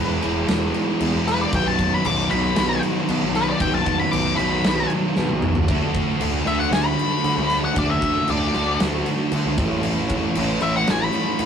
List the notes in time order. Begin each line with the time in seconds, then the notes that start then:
Already playing: E1 E3 G#3 B3 E4 G#4 B4
0.22 E1 E3 G#3 B3 E4 G#4, crash
0.48 E1, snare, crash
0.74 crash
1.00 E2, crash
1.14 E1
1.28 B4, snare, crash
1.41 D5
1.52 B1 B2 D#3 F#3 B3 F#4 G5, kick, crash
1.67 A5
1.79 kick, crash
1.94 B5
2.05 B1 D6, crash
2.30 B1 B2 D#3 F#3 B3 F#4 B5, crash
2.56 B1, snare, crash
2.83 crash
3.08 B2, crash
3.22 B1
3.35 B4, snare, crash
3.48 D5
3.60 B1 B2 D#3 F#3 B3 F#4 G5, kick, crash
3.75 A5
3.86 kick, crash
4.00 B5
4.11 B1 D6, crash
4.38 B1 B2 D#3 F#3 B3 F#4 B5, crash
4.64 B1, snare, crash
4.90 crash
5.16 B2, snare
5.29 B1, high tom
5.42 mid tom
5.55 floor tom
5.68 D2 D3 A3 D4 F#4, kick, crash
5.95 kick, crash
6.20 D2, crash
6.46 D2 D3 A3 D4 F#4 E5, crash
6.60 F#5
6.71 D2 G#5, snare, crash
6.85 B5
6.99 crash
7.24 D3, crash
7.36 D2
7.50 snare, crash
7.65 F#5
7.74 D2 D3 A3 D4 F#4, kick, crash
7.78 D5
7.90 E5
8.02 kick, crash
8.28 D2 D5, crash
8.54 D2 D3 A3 D4 F#4, crash
8.80 D2, snare, crash
9.06 crash
9.31 D3, crash
9.45 D2
9.57 A1 A2 E3 A3 C#4 E4, kick, crash
9.83 crash
10.09 kick, crash
10.35 A1 A2 E3 A3 C#4 E4, crash
10.61 A1 E5, crash
10.76 F#5
10.87 A1 G#5, snare, crash
11.04 B5
11.13 crash
11.39 A2, crash